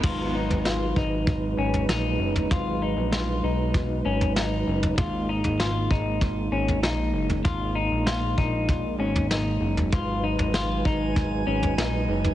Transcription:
<<
  \new Staff \with { instrumentName = "Synth texture" } { \time 4/4 \key gis \dorian \tempo 4 = 97 r1 | r1 | r1 | r1 |
r4 gis''2~ gis''16 r8. | }
  \new Staff \with { instrumentName = "Clean electric guitar" } { \time 4/4 \key gis \dorian eis'8 dis'8 eis'8 dis'4 cis'8 dis'4 | eis'8 dis'8 eis'8 dis'4 cis'8 dis'4 | eis'8 dis'8 eis'8 dis'4 cis'8 dis'4 | eis'8 dis'8 eis'8 dis'4 cis'8 dis'4 |
eis'8 dis'8 eis'8 dis'4 cis'8 dis'4 | }
  \new Staff \with { instrumentName = "Tonewheel organ" } { \time 4/4 \key gis \dorian << { <fis b'>1~ | <fis b'>1 | ais1~ | ais1 |
<fis b'>1 | } \\ { <gis dis'>1~ | <gis dis'>1~ | <gis dis'>1~ | <gis dis'>1~ |
<gis dis'>1 | } >> }
  \new Staff \with { instrumentName = "Analog synth bass" } { \clef bass \time 4/4 \key gis \dorian gis,,8. gis,,8. gis,,4 gis,,8 ais,,8 fis,,8 | gis,,8. ais,,8. b,,4 gis,,4 fis,,8 | gis,,8. gis,,8. gis,,4 gis,,8 ais,,8 fis,,8 | gis,,8. ais,,8. ais,,4 gis,,4 fis,,8 |
gis,,8. gis,,8. gis,,4 gis,,8 ais,,8 fis,,8 | }
  \new DrumStaff \with { instrumentName = "Drums" } \drummode { \time 4/4 <cymc bd tomfh>8. tomfh16 sn8 bd8 <bd tomfh>8. tomfh16 sn8. tomfh16 | <bd tomfh>4 sn4 <bd tomfh>8. tomfh16 sn8. tomfh16 | <bd tomfh>8. tomfh16 sn8 bd8 <bd tomfh>8. tomfh16 sn8. tomfh16 | <bd tomfh>4 sn8 bd8 <bd tomfh>8. tomfh16 sn8. tomfh16 |
<bd tomfh>8. tomfh16 sn8 bd8 <bd tomfh>8. tomfh16 sn8. tomfh16 | }
>>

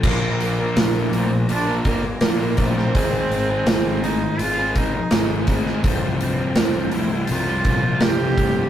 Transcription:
<<
  \new Staff \with { instrumentName = "Tonewheel organ" } { \time 4/4 \key bes \lydian \tempo 4 = 83 << { bes''1 | c'''1~ | c'''1 | } \\ { <g' d''>1 | <aes' ees''>1 | <g' g''>1 | } >> }
  \new Staff \with { instrumentName = "Cello" } { \time 4/4 \key bes \lydian bes8 bes4 c'8 d'8 bes8 bes8 c'8~ | c'4. ees'8 f'8 ees'4 r8 | c'8 c'4 e'8 f'4 g'4 | }
  \new Staff \with { instrumentName = "Distorted electric guitar" } { \time 4/4 \key bes \lydian <bes, f bes d' f' bes'>8. <bes d' f' bes'>16 <bes, f bes d' f' bes'>8 <bes d' f' bes'>8 <bes d' f' bes'>16 <bes d' f' bes'>16 <bes d' f' bes'>8 <bes, f bes d' f' bes'>8 <bes d' f' bes'>8 | <aes, ees aes c' ees' aes'>8. <aes c' ees' aes'>16 <aes, ees aes c' ees' aes'>8 <aes c' ees' aes'>8 <aes c' ees' aes'>16 <aes c' ees' aes'>16 <aes c' ees' aes'>8 <aes, ees aes c' ees' aes'>8 <aes c' ees' aes'>8 | <c, g, c f>8. <g, c f>16 <c, g, c f>8 <c, g, c f>8 <c, g, c f>16 <g, c f>16 <c, g, c f>8 <c, g, c f>8 <c, g, c f>8 | }
  \new Staff \with { instrumentName = "Overdriven electric guitar" } { \time 4/4 \key bes \lydian <bes, f bes d' f' bes'>8 <bes d' f' bes'>8 <bes, f bes d' f' bes'>8 <bes d' f' bes'>8. <bes d' f' bes'>16 <bes d' f' bes'>8 <bes, f bes d' f' bes'>8 <bes d' f' bes'>16 <bes d' f' bes'>16 | <aes, ees aes c' ees' aes'>8 <aes c' ees' aes'>8 <aes, ees aes c' ees' aes'>8 <aes c' ees' aes'>8. <aes c' ees' aes'>16 <aes c' ees' aes'>8 <aes, ees aes c' ees' aes'>8 <aes c' ees' aes'>16 <aes c' ees' aes'>16 | <c, g, c f>8 <c, g, c f>8 <c, g, c f>8 <c, g, c f>8. <g, c f>16 <c, g, c f>8 <c, g, c f>8 <c, g, c f>16 <g, c f>16 | }
  \new Staff \with { instrumentName = "Picked electric bass" } { \clef bass \time 4/4 \key bes \lydian bes,,4 bes,,8 bes,,8 bes,,8 g,,8 bes,,8 bes,,8 | aes,,8 aes,,8 aes,,4 aes,,4 aes,,4 | c,,4 c,,8 c,,8 c,8 bes,,8 c,,8 c,,8 | }
  \new DrumStaff \with { instrumentName = "Drums" } \drummode { \time 4/4 <cymc bd>8 hho8 <hho sn>8 hho8 hho8 <hho bd>8 <hho sn>8 <hho bd>16 sn16 | <hho bd>8 hho8 <hho sn>8 hho8 hho8 <hho bd>8 <hho sn>8 <hho bd>16 sn16 | <hho bd>8 hho8 <hho sn>8 hho8 hho8 <hho bd>8 <hho sn>8 <hho bd>8 | }
>>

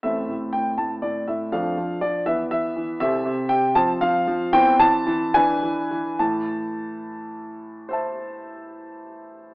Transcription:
<<
  \new Staff \with { instrumentName = "Grand piano" } { \time 6/8 \key a \minor \tempo 4. = 77 << { e''4 g''8 a''8 d''8 e''8 | f''4 d''8 e''8 e''4 | e''4 g''8 a''8 f''4 | g''8 a''4 gis''4. |
a''2.~ | a''2. | } \\ { <c' a'>2. | <d' a'>4. <b b'>4. | <c' a'>4. <c' c''>4. | <c' c''>4. <d' b'>4. |
r2. | <c'' e'' a''>2. | } >> }
  \new Staff \with { instrumentName = "Grand piano" } { \clef bass \time 6/8 \key a \minor <a,, a,>8 a,8 a,8 a,8 a,8 a,8 | <f, f>8 f8 f8 e8 e8 e8 | <c, c>8 c8 c8 f8 f8 f8 | <e, e>8 e8 e8 e8 e8 e8 |
<a, e>2.~ | <a, e>2. | }
>>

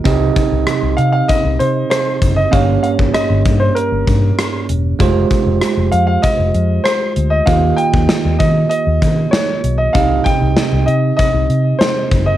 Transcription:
<<
  \new Staff \with { instrumentName = "Grand piano" } { \time 4/4 \key c \phrygian \tempo 4 = 97 r4. f''16 f''16 ees''8 c''8 c''8. ees''16 | f''8 f''8 ees''8. c''16 bes'4. r8 | r4. f''16 f''16 ees''4 c''8. ees''16 | f''8 g''4 ees''8 ees''4 des''8. ees''16 |
f''8 g''4 ees''8 ees''4 c''8. ees''16 | }
  \new Staff \with { instrumentName = "Tine electric piano" } { \time 4/4 \key c \phrygian <c' ees' g' ees''>1 | <bes des' g' des''>1 | <aes f' g' c''>1 | <bes f' g' ees''>1 |
<c' ees' g' ees''>1 | }
  \new Staff \with { instrumentName = "Tine electric piano" } { \clef bass \time 4/4 \key c \phrygian c4. r2 r8 | g,4. r2 r8 | r1 | ees4. r2 r8 |
c4. r2 r8 | }
  \new Staff \with { instrumentName = "Fingered electric bass" } { \clef bass \time 4/4 \key c \phrygian c,8 r16 c,16 r16 c,16 c8 r16 c,16 c8 r8 ges,,8 | g,,8 r16 g,,16 r16 g,,16 g,8 r16 g,,16 g,8 r8 e,,8 | f,,8 r16 f,,16 r16 f,,16 f,8 r16 f,,16 f,8 r8 d,8 | ees,8 r16 ees,16 r16 ees,16 ees8 r16 ees,16 ees8 r8 b,,8 |
c,8 r16 c,16 r16 c,16 c8 r16 c,16 c8 r8 ges,,8 | }
  \new DrumStaff \with { instrumentName = "Drums" } \drummode { \time 4/4 <hh bd>8 <hh bd>8 <hh ss>8 hh8 <hh bd>8 hh8 <hh ss>8 <hh bd>8 | <hh bd>8 hh16 bd16 <hh ss>8 <hh bd>8 hh8 <hh bd>8 <hh ss>8 hh8 | <hh bd>8 <hh bd>8 <hh ss>8 hh8 <hh bd>8 hh8 <hh ss>8 hh8 | <hh bd>8 hh16 bd16 <hh sn>8 <hh bd>8 hh8 <hh bd>8 <hh sn>8 hh8 |
<hh bd>8 <hh bd>8 <hh sn>8 hh8 <hh bd>8 hh8 <hh sn>8 <hh bd>8 | }
>>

